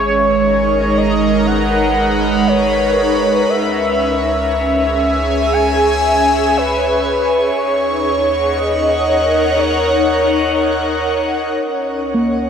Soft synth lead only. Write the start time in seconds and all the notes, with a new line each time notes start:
Already playing: C#5
0.97 D#5
1.46 F#5
2.48 C#5
3.50 E5
4.53 E5
5.53 G#5
6.57 B4
7.58 C#5
8.57 D#5
9.59 C#5